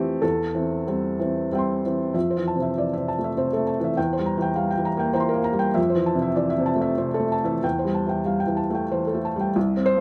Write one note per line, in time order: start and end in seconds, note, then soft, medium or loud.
0.00 0.19 F2 medium
0.00 0.25 E3 soft
0.00 0.25 A3 soft
0.00 0.25 C4 soft
0.00 0.21 G4 medium
0.00 0.22 A4 medium
0.22 2.11 E2 soft
0.22 1.83 A4 medium
0.55 0.84 E3 soft
0.55 0.84 C4 soft
0.87 1.16 G3 soft
0.87 1.16 C4 soft
1.19 1.48 E3 soft
1.19 1.49 C4 soft
1.52 1.81 G3 soft
1.52 1.81 C4 soft
1.52 2.12 E5 soft
1.52 2.13 G5 soft
1.58 2.14 C6 soft
1.85 2.13 E3 soft
1.85 2.13 C4 soft
2.14 3.93 F2 soft
2.14 2.39 E5 soft
2.30 2.55 C5 soft
2.37 2.69 E3 soft
2.48 2.71 A5 soft
2.56 2.88 C3 soft
2.62 2.86 E5 soft
2.78 3.09 E3 soft
2.78 2.92 D5 soft
2.93 3.29 C3 soft
2.93 3.17 E5 soft
3.08 3.32 A5 soft
3.18 3.50 A3 soft
3.24 3.47 E5 soft
3.37 3.69 C3 soft
3.37 3.61 C5 soft
3.53 3.89 A3 soft
3.53 3.77 A4 soft
3.67 3.91 A5 soft
3.80 3.99 E3 soft
3.84 3.98 E5 soft
3.97 5.74 E2 medium
3.97 4.22 G5 soft
4.13 4.37 C5 soft
4.19 4.51 G3 soft
4.26 4.51 A#5 soft
4.37 4.70 E3 soft
4.42 4.67 G5 soft
4.55 4.89 G3 soft
4.55 4.72 F5 soft
4.70 4.96 G5 soft
4.77 5.10 E3 soft
4.85 5.10 A#5 soft
4.97 5.29 A#3 soft
4.97 5.12 G5 soft
5.13 5.48 E3 soft
5.13 5.39 C5 medium
5.13 5.58 G5 soft
5.13 5.43 A#5 soft
5.20 5.75 C6 soft
5.29 5.55 A#4 medium
5.34 5.67 A#3 soft
5.44 5.70 A#5 medium
5.53 5.75 G3 soft
5.59 5.76 G5 soft
5.74 7.58 F2 medium
5.74 6.00 E5 medium
5.90 6.15 C5 soft
5.95 6.29 E3 soft
6.06 6.31 A5 medium
6.15 6.49 C3 soft
6.22 6.47 E5 soft
6.36 6.70 E3 soft
6.36 6.52 D5 soft
6.50 6.76 E5 medium
6.58 6.91 C3 soft
6.66 6.92 A5 medium
6.76 7.11 A3 soft
6.81 7.08 E5 soft
6.98 7.33 C3 soft
6.98 7.24 C5 soft
7.14 7.41 A4 soft
7.20 7.55 A3 soft
7.32 7.58 A5 soft
7.44 7.65 E3 soft
7.44 7.63 E5 soft
7.63 9.52 E2 soft
7.63 7.90 G5 soft
7.79 8.05 C5 soft
7.84 8.19 G3 soft
7.94 8.21 A5 soft
8.06 8.40 E3 soft
8.06 8.36 G5 soft
8.25 8.60 G3 soft
8.25 8.43 F5 soft
8.40 8.67 G5 soft
8.47 8.82 E3 soft
8.57 8.84 A5 soft
8.70 9.05 A3 soft
8.75 9.01 G5 soft
8.91 9.26 E3 soft
8.91 9.17 C5 soft
9.07 9.34 A4 soft
9.14 9.48 A3 soft
9.25 9.50 A5 soft
9.36 9.57 G3 soft
9.41 9.56 G5 soft
9.56 10.01 C2 medium
9.77 10.01 C4 soft
9.86 10.01 C5 medium
9.97 10.01 G2 soft